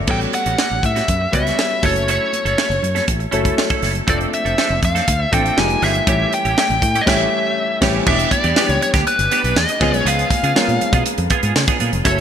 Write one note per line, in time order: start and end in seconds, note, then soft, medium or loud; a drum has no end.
0.00 0.30 D5 medium
0.07 0.25 A1 medium
0.07 0.69 G3 medium
0.07 0.31 G3 medium
0.07 0.69 B3 medium
0.07 0.69 C#4 medium
0.07 0.31 C#4 medium
0.07 0.69 F#4 medium
0.07 0.32 F#4 medium
0.07 0.70 A4 medium
0.07 0.17 G5 loud
0.07 kick loud
0.07 crash medium
0.20 closed hi-hat soft
0.20 muted conga soft
0.32 0.85 F#5 loud
0.32 closed hi-hat medium
0.32 high conga medium
0.46 0.54 A1 medium
0.46 0.57 G3 medium
0.46 0.58 C#4 medium
0.46 0.58 F#4 medium
0.46 closed hi-hat soft
0.58 0.74 G3 medium
0.58 0.71 C#4 medium
0.58 0.70 F#4 medium
0.58 snare loud
0.58 muted conga soft
0.58 high conga medium
0.70 0.80 A1 medium
0.70 muted clean electric guitar stroke soft
0.70 muted conga soft
0.70 high conga medium
0.83 1.00 A2 loud
0.83 1.34 E5 medium
0.83 muted clean electric guitar stroke soft
0.83 kick medium
0.83 closed hi-hat medium
0.83 low conga medium
0.95 1.07 G3 medium
0.95 1.07 C#4 medium
0.95 1.07 F#4 medium
0.95 snare soft
0.95 closed hi-hat soft
0.95 high conga medium
1.08 1.25 F#2 medium
1.08 muted clean electric guitar stroke soft
1.08 kick medium
1.08 closed hi-hat medium
1.08 muted conga soft
1.21 muted clean electric guitar stroke soft
1.21 muted conga soft
1.32 1.50 C#2 medium
1.32 1.78 G3 medium
1.32 1.45 G3 medium
1.32 1.78 B3 medium
1.32 1.79 C#4 medium
1.32 1.45 C#4 medium
1.32 1.79 F#4 medium
1.32 1.44 F#4 medium
1.32 1.79 B4 medium
1.32 1.85 E5 medium
1.32 kick medium
1.32 closed hi-hat medium
1.32 high conga medium
1.45 1.58 G3 soft
1.45 1.58 C#4 medium
1.45 1.57 F#4 medium
1.45 snare soft
1.45 closed hi-hat soft
1.58 snare loud
1.58 high conga medium
1.70 muted clean electric guitar stroke medium
1.70 muted conga soft
1.82 2.17 F#1 medium
1.82 2.62 F#3 medium
1.82 2.62 A3 medium
1.82 2.62 C#4 medium
1.82 1.98 C#4 medium
1.82 2.62 E4 medium
1.82 1.95 E4 medium
1.82 2.63 A4 medium
1.82 1.95 A4 medium
1.82 2.09 C#5 medium
1.82 kick medium
1.82 open hi-hat medium
1.82 low conga medium
1.94 muted clean electric guitar stroke soft
1.94 closed hi-hat soft
1.94 low conga medium
2.08 2.31 C#4 medium
2.08 2.31 E4 medium
2.08 2.31 A4 medium
2.08 3.05 C#5 medium
2.08 closed hi-hat medium
2.08 muted conga soft
2.20 muted conga soft
2.33 muted clean electric guitar stroke soft
2.33 closed hi-hat medium
2.33 high conga medium
2.45 2.54 F#1 medium
2.45 2.56 C#4 medium
2.45 2.57 E4 medium
2.45 2.57 A4 medium
2.45 closed hi-hat soft
2.57 2.73 C#4 medium
2.57 2.70 E4 medium
2.57 2.69 A4 medium
2.57 snare loud
2.57 high conga medium
2.70 2.78 F#1 loud
2.70 muted clean electric guitar stroke soft
2.70 closed hi-hat soft
2.70 high conga medium
2.82 3.00 F#2 medium
2.82 muted clean electric guitar stroke soft
2.82 closed hi-hat medium
2.82 low conga medium
2.95 3.06 C#4 medium
2.95 3.06 E4 medium
2.95 3.07 A4 medium
2.95 snare soft
2.95 closed hi-hat soft
2.95 high conga medium
3.07 3.25 A1 medium
3.07 muted clean electric guitar stroke soft
3.07 kick medium
3.07 closed hi-hat medium
3.20 muted clean electric guitar stroke soft
3.20 closed hi-hat soft
3.20 muted conga soft
3.31 3.50 F#1 medium
3.31 3.78 F#3 medium
3.31 3.78 A3 medium
3.31 3.44 C#4 medium
3.31 3.79 C#4 medium
3.31 3.44 E4 medium
3.31 3.79 E4 medium
3.31 3.43 A4 medium
3.31 3.79 A4 medium
3.31 closed hi-hat medium
3.31 high conga soft
3.44 3.56 C#4 soft
3.44 3.56 E4 medium
3.44 3.57 A4 medium
3.44 kick medium
3.44 closed hi-hat medium
3.57 muted clean electric guitar stroke soft
3.57 snare loud
3.57 high conga medium
3.70 3.81 C#4 medium
3.70 3.81 E4 medium
3.70 3.82 A4 medium
3.70 kick loud
3.70 closed hi-hat soft
3.82 4.00 F#1 medium
3.82 3.94 C#4 medium
3.82 3.94 E4 medium
3.82 3.94 A4 medium
3.82 snare soft
3.82 open hi-hat medium
3.82 low conga medium
3.95 muted clean electric guitar stroke soft
3.95 closed hi-hat medium
3.95 low conga medium
4.07 4.25 F1 medium
4.07 4.69 F3 medium
4.07 4.69 A3 medium
4.07 4.30 C4 medium
4.07 4.69 C4 medium
4.07 4.30 D4 medium
4.07 4.69 D4 medium
4.07 4.31 A4 medium
4.07 4.70 A4 medium
4.07 4.16 D5 medium
4.07 kick loud
4.07 closed hi-hat medium
4.07 muted conga soft
4.21 closed hi-hat soft
4.21 muted conga soft
4.32 4.80 E5 medium
4.32 muted clean electric guitar stroke soft
4.32 closed hi-hat medium
4.32 high conga medium
4.45 4.54 F1 medium
4.45 4.56 C4 medium
4.45 4.57 D4 medium
4.45 4.57 A4 medium
4.45 closed hi-hat soft
4.57 4.73 C4 medium
4.57 4.70 D4 medium
4.57 4.69 A4 medium
4.57 snare loud
4.57 high conga medium
4.70 4.79 F1 medium
4.70 muted clean electric guitar stroke soft
4.70 high conga medium
4.82 4.99 F2 medium
4.82 5.22 F5 loud
4.82 muted clean electric guitar stroke soft
4.82 kick medium
4.82 closed hi-hat medium
4.82 low conga medium
4.95 5.06 C4 soft
4.95 5.07 D4 medium
4.95 5.07 A4 medium
4.95 snare soft
4.95 closed hi-hat soft
4.95 high conga medium
5.07 5.25 D2 loud
5.07 muted clean electric guitar stroke soft
5.07 kick medium
5.07 closed hi-hat medium
5.20 5.33 E5 loud
5.20 muted clean electric guitar stroke soft
5.31 5.49 A1 medium
5.31 5.55 F3 medium
5.31 5.57 A3 medium
5.31 5.57 C4 medium
5.31 5.45 C4 medium
5.31 5.57 D4 medium
5.31 5.44 D4 medium
5.31 5.57 A4 medium
5.31 5.44 A4 medium
5.31 5.59 G5 medium
5.31 kick medium
5.31 closed hi-hat medium
5.31 high conga medium
5.45 5.57 C4 medium
5.45 5.57 D4 medium
5.45 5.57 A4 medium
5.45 closed hi-hat soft
5.56 5.75 F1 medium
5.56 5.97 F3 medium
5.56 5.97 G#3 medium
5.56 5.97 A#3 medium
5.56 5.97 D#4 medium
5.56 5.97 G4 medium
5.56 5.81 G#5 medium
5.56 snare loud
5.56 muted conga soft
5.56 high conga medium
5.70 muted clean electric guitar stroke soft
5.70 closed hi-hat soft
5.82 5.99 G1 loud
5.82 5.98 A#3 medium
5.82 5.95 D#4 medium
5.82 5.94 G#4 medium
5.82 6.34 E5 loud
5.82 snare soft
5.82 open hi-hat medium
5.82 low conga medium
5.95 muted clean electric guitar stroke soft
5.95 closed hi-hat medium
5.95 low conga medium
6.07 6.24 A1 loud
6.07 6.68 E3 medium
6.07 6.68 G3 medium
6.07 6.68 A3 medium
6.07 6.30 A3 medium
6.07 6.69 C#4 medium
6.07 6.30 C#4 medium
6.07 6.69 G4 medium
6.07 6.31 G4 medium
6.07 kick loud
6.07 closed hi-hat medium
6.07 muted conga soft
6.20 muted conga soft
6.32 6.58 G5 medium
6.32 muted clean electric guitar stroke soft
6.32 closed hi-hat medium
6.32 high conga medium
6.45 6.53 A1 medium
6.45 6.56 A3 medium
6.45 6.57 C#4 medium
6.45 6.57 G4 medium
6.45 closed hi-hat soft
6.57 6.73 A3 medium
6.57 6.70 C#4 medium
6.57 6.69 G4 medium
6.57 7.02 G5 loud
6.57 snare loud
6.57 muted conga soft
6.57 high conga medium
6.69 6.78 A1 loud
6.69 muted clean electric guitar stroke medium
6.69 closed hi-hat soft
6.69 muted conga soft
6.69 high conga medium
6.81 6.99 A2 loud
6.81 muted clean electric guitar stroke soft
6.81 kick medium
6.81 closed hi-hat medium
6.81 low conga medium
6.95 7.07 A3 medium
6.95 7.07 C#4 medium
6.95 7.06 G4 medium
6.95 closed hi-hat medium
6.95 high conga medium
7.01 7.08 D#5 medium
7.06 7.24 A1 loud
7.06 7.23 E3 loud
7.06 7.23 G3 medium
7.06 7.24 A3 loud
7.06 7.25 A3 loud
7.06 7.24 C#4 medium
7.06 7.25 C#4 loud
7.06 7.24 G4 loud
7.06 7.79 E5 medium
7.06 kick loud
7.06 snare loud
7.06 crash medium
7.81 7.99 A1 loud
7.81 7.98 E3 loud
7.81 7.98 G3 loud
7.81 7.98 A3 loud
7.81 7.99 A3 loud
7.81 7.99 C#4 loud
7.81 7.99 C#4 medium
7.81 7.99 G4 medium
7.81 kick loud
7.81 snare loud
7.81 crash medium
8.06 8.24 E1 loud
8.06 8.37 E3 medium
8.06 8.37 G3 medium
8.06 8.37 B3 medium
8.06 8.30 B3 medium
8.06 8.37 D4 medium
8.06 8.30 D4 medium
8.06 8.37 G4 medium
8.06 8.30 G4 medium
8.06 8.32 E5 medium
8.06 kick loud
8.06 crash medium
8.19 closed hi-hat medium
8.19 muted conga soft
8.31 8.70 D5 medium
8.31 muted clean electric guitar stroke soft
8.31 kick medium
8.31 closed hi-hat medium
8.31 high conga medium
8.44 8.53 E2 medium
8.44 8.56 B3 medium
8.44 8.56 D4 medium
8.44 8.56 G4 medium
8.44 closed hi-hat soft
8.56 9.17 E3 medium
8.56 9.18 G3 medium
8.56 9.17 B3 medium
8.56 8.72 B3 medium
8.56 9.18 D4 medium
8.56 8.69 D4 medium
8.56 9.18 G4 medium
8.56 8.69 G4 medium
8.56 snare loud
8.56 muted conga soft
8.56 high conga medium
8.68 8.77 C#2 medium
8.68 8.82 C#5 medium
8.68 muted clean electric guitar stroke soft
8.68 closed hi-hat soft
8.68 muted conga soft
8.68 high conga medium
8.81 8.89 C#5 medium
8.81 muted clean electric guitar stroke soft
8.81 closed hi-hat medium
8.81 low conga medium
8.94 9.02 D2 medium
8.94 9.06 B3 soft
8.94 9.06 D4 medium
8.94 9.06 G4 medium
8.94 kick loud
8.94 snare soft
8.94 closed hi-hat soft
8.94 high conga medium
9.07 9.58 B4 medium
9.07 closed hi-hat medium
9.07 muted conga soft
9.19 9.27 G1 medium
9.19 muted clean electric guitar stroke soft
9.19 closed hi-hat medium
9.31 9.44 B3 medium
9.31 9.44 D4 medium
9.31 9.43 G4 loud
9.31 closed hi-hat medium
9.31 high conga medium
9.44 9.52 B1 medium
9.44 9.56 B3 medium
9.44 9.56 D4 medium
9.44 9.56 G4 medium
9.44 closed hi-hat medium
9.56 9.64 E2 loud
9.56 10.08 D#5 medium
9.56 snare loud
9.56 high conga medium
9.69 muted clean electric guitar stroke soft
9.69 closed hi-hat medium
9.80 9.93 C#2 loud
9.80 10.40 F3 medium
9.80 10.41 G#3 medium
9.80 10.41 B3 medium
9.80 9.97 B3 medium
9.80 10.41 C#4 medium
9.80 9.94 F4 medium
9.80 10.41 G#4 medium
9.80 9.93 G#4 medium
9.80 kick loud
9.80 snare soft
9.80 crash medium
9.80 low conga medium
9.93 10.02 B1 medium
9.93 muted clean electric guitar stroke soft
9.93 closed hi-hat medium
9.93 low conga medium
10.05 10.23 C#2 loud
10.05 10.29 B3 medium
10.05 10.29 F4 medium
10.05 10.30 G#4 medium
10.05 11.03 F5 loud
10.05 closed hi-hat medium
10.05 muted conga soft
10.19 closed hi-hat soft
10.30 muted clean electric guitar stroke medium
10.30 kick medium
10.30 closed hi-hat medium
10.30 high conga medium
10.43 10.52 C#3 medium
10.43 10.54 B3 medium
10.43 10.55 F4 medium
10.43 10.56 G#4 medium
10.43 closed hi-hat soft
10.55 11.17 F3 medium
10.55 11.17 G#3 medium
10.55 11.17 B3 medium
10.55 10.71 B3 medium
10.55 11.17 C#4 medium
10.55 10.69 F4 medium
10.55 10.68 G#4 medium
10.55 11.17 A#4 medium
10.55 snare loud
10.55 muted conga soft
10.55 high conga medium
10.67 10.77 A#2 medium
10.67 muted clean electric guitar stroke medium
10.67 closed hi-hat soft
10.67 high conga medium
10.81 muted clean electric guitar stroke soft
10.81 closed hi-hat medium
10.81 low conga medium
10.93 11.01 B2 medium
10.93 11.05 B3 medium
10.93 11.05 F4 medium
10.93 11.06 G#4 medium
10.93 kick loud
10.93 closed hi-hat medium
10.93 high conga medium
11.06 muted clean electric guitar stroke medium
11.06 closed hi-hat medium
11.06 muted conga soft
11.18 11.27 F2 medium
11.18 muted clean electric guitar stroke soft
11.18 closed hi-hat medium
11.30 11.43 B3 medium
11.30 11.42 F4 medium
11.30 11.42 G#4 medium
11.30 kick medium
11.30 closed hi-hat medium
11.30 high conga medium
11.43 11.52 G#2 medium
11.43 11.55 B3 medium
11.43 11.55 F4 medium
11.43 11.55 G#4 medium
11.43 closed hi-hat medium
11.56 11.64 C#3 medium
11.56 muted clean electric guitar stroke soft
11.56 snare loud
11.56 muted conga soft
11.56 high conga medium
11.67 11.78 B3 medium
11.67 11.79 F4 medium
11.67 11.80 G#4 medium
11.67 kick loud
11.67 closed hi-hat medium
11.67 muted conga soft
11.79 11.89 A#2 medium
11.79 11.92 B3 medium
11.79 11.92 F4 medium
11.79 11.91 G#4 medium
11.79 closed hi-hat medium
11.79 low conga medium
11.92 12.02 F1 loud
11.92 muted clean electric guitar stroke medium
11.92 closed hi-hat medium
11.92 low conga medium
12.04 12.20 F#1 loud
12.04 12.20 F#3 medium
12.04 12.20 A3 medium
12.04 12.20 C#4 medium
12.04 12.20 E4 medium
12.04 12.20 A4 medium
12.04 12.20 C#5 medium
12.04 kick loud
12.04 closed hi-hat medium
12.04 muted conga soft
12.17 muted conga soft